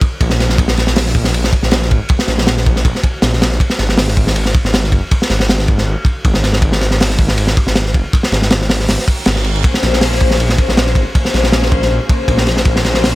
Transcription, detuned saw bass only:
0.21 0.76 A#1 loud
0.77 1.51 A#1 loud
1.62 1.93 A#1 loud
1.91 2.00 G#1 medium
2.28 2.83 A#1 loud
2.85 2.94 A#1 medium
3.23 3.59 A#1 loud
3.79 4.53 G#1 loud
4.64 4.94 G#1 loud
4.92 5.01 F#1 medium
5.30 5.85 G#1 loud
5.87 5.96 G#1 loud
6.25 6.80 G#1 loud
6.81 7.55 G#1 loud
7.66 7.96 G#1 loud
7.94 8.03 F#1 medium
8.32 8.87 G#1 loud
8.89 8.98 G#1 medium
9.27 9.63 G#1 medium
9.83 10.57 A#1 loud
10.68 10.97 A#1 loud
10.95 11.05 G#1 medium
11.34 11.89 A#1 loud
11.91 11.99 A#1 medium
12.28 12.83 A#1 loud
12.85 13.15 A#1 loud

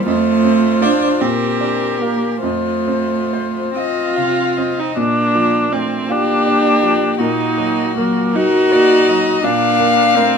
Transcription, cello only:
0.07 0.84 A3 loud
0.82 1.22 D4 medium
1.21 2.03 C4 medium
2.01 2.41 A#3 medium
2.42 3.72 A3 medium
3.75 4.74 C4 medium
4.77 4.98 C4 medium
4.97 5.71 A#3 medium
5.72 6.11 A3 medium
6.09 7.18 A#3 medium
7.19 7.98 A#3 medium
7.97 8.37 F#3 medium
8.36 9.46 D#4 loud
9.44 10.17 A#3 medium
10.15 10.38 A3 medium

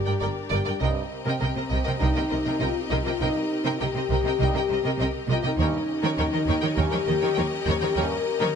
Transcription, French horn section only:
0.00 0.78 G4 medium
0.80 2.01 C4 medium
2.00 2.60 D#4 medium
2.62 2.81 F4 medium
2.83 3.02 D#4 medium
3.02 3.21 F4 medium
3.22 3.81 D#4 medium
3.80 5.14 G4 medium
5.31 5.45 F4 medium
5.44 6.78 D#4 medium
6.79 7.94 G4 loud
7.95 8.55 A#4 medium

